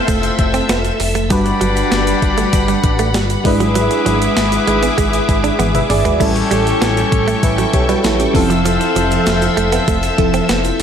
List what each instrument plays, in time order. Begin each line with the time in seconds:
Already playing: fm electric piano A3 E4 F4 C5, horn section C4 F4 A4 C5, string machine A4 E5 E6
0.08 analog synth bass F1, clean electric guitar A3, kick, closed hi-hat, shaker
0.23 closed hi-hat, shaker
0.39 analog synth bass F1, muted clean electric guitar stroke, kick, closed hi-hat
0.54 clean electric guitar C4, closed hi-hat, shaker
0.69 analog synth bass F1, clean electric guitar B3, snare, closed hi-hat, shaker
0.85 closed hi-hat, shaker
1.00 analog synth bass F1, muted clean electric guitar stroke, open hi-hat
1.15 clean electric guitar A3, closed hi-hat, shaker
1.30 analog synth bass G1, fm electric piano G3 D4 F#4 B4, clean electric guitar G3, string machine G3 F#5 B5, horn section D4 G4 B4 D5, kick, closed hi-hat, shaker
1.46 muted clean electric guitar stroke, closed hi-hat, shaker
1.61 analog synth bass G1, clean electric guitar F#3, closed hi-hat, shaker
1.76 closed hi-hat, shaker
1.92 analog synth bass G1, clean electric guitar B3, snare, closed hi-hat, shaker
2.07 closed hi-hat, shaker
2.22 analog synth bass G1, muted clean electric guitar stroke, kick, closed hi-hat
2.38 clean electric guitar A3, closed hi-hat, shaker
2.53 analog synth bass G1, kick, closed hi-hat, shaker
2.68 clean electric guitar G3, closed hi-hat, shaker
2.84 analog synth bass A1, muted clean electric guitar stroke, kick, closed hi-hat
2.99 clean electric guitar A3, closed hi-hat, shaker
3.14 analog synth bass G1, clean electric guitar G3, snare, closed hi-hat, shaker
3.30 closed hi-hat, shaker
3.44 analog synth bass G#1, fm electric piano G#3 D4 E4 B4, horn section B3 E4 G#4 B4, string machine G#4 E5 D6, muted clean electric guitar stroke, kick, open hi-hat
3.60 clean electric guitar F#3, closed hi-hat, shaker
3.75 clean electric guitar F#3, closed hi-hat, shaker
3.91 muted clean electric guitar stroke, closed hi-hat, shaker
4.06 analog synth bass G#1, clean electric guitar F#3, closed hi-hat, shaker
4.22 closed hi-hat, shaker
4.37 analog synth bass G#1, muted clean electric guitar stroke, snare, closed hi-hat, shaker
4.52 closed hi-hat, shaker
4.67 analog synth bass G#1, clean electric guitar G#3, closed hi-hat
4.83 clean electric guitar B3, closed hi-hat, shaker
4.98 analog synth bass G#1, clean electric guitar G#3, kick, closed hi-hat, shaker
5.13 closed hi-hat, shaker
5.29 analog synth bass G#1, muted clean electric guitar stroke, kick, closed hi-hat, shaker
5.44 clean electric guitar D4, closed hi-hat, shaker
5.59 analog synth bass G#1, clean electric guitar B3, closed hi-hat, high tom, shaker
5.75 fm electric piano B4 E5, closed hi-hat, mid tom, shaker
5.90 analog synth bass G#1, fm electric piano G#4 D5, muted clean electric guitar stroke, mid tom, open hi-hat
6.05 clean electric guitar G#3, fm electric piano F#4 B4, closed hi-hat, floor tom, shaker
6.19 analog synth bass A1, fm electric piano G3 C#4 E4 A4, clean electric guitar A3, horn section C#4 G4 A4 C#5, string machine A4 G5 C#6, kick, crash, shaker
6.36 muted clean electric guitar stroke, closed hi-hat, shaker
6.51 analog synth bass A1, clean electric guitar G3, closed hi-hat, shaker
6.67 closed hi-hat, shaker
6.82 analog synth bass A1, clean electric guitar B3, snare, closed hi-hat, shaker
6.97 closed hi-hat, shaker
7.12 analog synth bass A1, muted clean electric guitar stroke, kick, closed hi-hat
7.28 clean electric guitar A3, closed hi-hat, shaker
7.43 analog synth bass A1, fm electric piano B4 E5, kick, closed hi-hat, shaker
7.58 clean electric guitar F#3, closed hi-hat, shaker
7.73 analog synth bass B1, fm electric piano G4 C#5, muted clean electric guitar stroke, kick, closed hi-hat
7.89 clean electric guitar G3, fm electric piano F#4 B4, closed hi-hat, shaker
8.04 analog synth bass A1, clean electric guitar F#3, fm electric piano E4 A4, snare, closed hi-hat, shaker
8.20 fm electric piano C#4 G4, closed hi-hat, shaker
8.34 analog synth bass F1, fm electric piano F3 C4 E4 A4, horn section C4 F4 A4 C5, string machine E5 E6, muted clean electric guitar stroke, kick, open hi-hat
8.50 clean electric guitar F3, closed hi-hat, shaker
8.65 clean electric guitar F3, closed hi-hat, shaker
8.81 muted clean electric guitar stroke, closed hi-hat, shaker
8.96 analog synth bass F1, clean electric guitar F3, closed hi-hat, shaker
9.11 closed hi-hat, shaker
9.26 analog synth bass F1, muted clean electric guitar stroke, snare, closed hi-hat, shaker
9.42 closed hi-hat, shaker
9.57 analog synth bass F1, clean electric guitar A3, closed hi-hat
9.72 clean electric guitar B3, closed hi-hat, shaker
9.88 analog synth bass F1, clean electric guitar A3, kick, closed hi-hat, shaker
10.03 closed hi-hat, shaker
10.17 analog synth bass F1, fm electric piano F3 C4 E4 A4, muted clean electric guitar stroke, kick, closed hi-hat
10.34 clean electric guitar C4, closed hi-hat, shaker
10.49 analog synth bass F1, clean electric guitar B3, snare, closed hi-hat, shaker
10.64 closed hi-hat, shaker